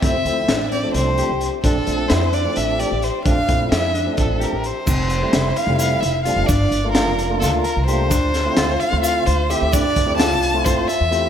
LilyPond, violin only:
\new Staff \with { instrumentName = "Violin" } { \time 7/8 \key d \minor \tempo 4 = 130 e''4. d''8 c''4 r8 | a'4 c''8 d''8 e''8 d''8 c''8 | f''4 e''4 a'8 bes'8 c''8~ | c''4. f''8 f''8 e''8 f''8 |
d''4 bes'4 a'8 bes'8 c''8~ | c''4. f''8 f''8 c''8 e''8 | d''4 a''4 c''8 e''4 | }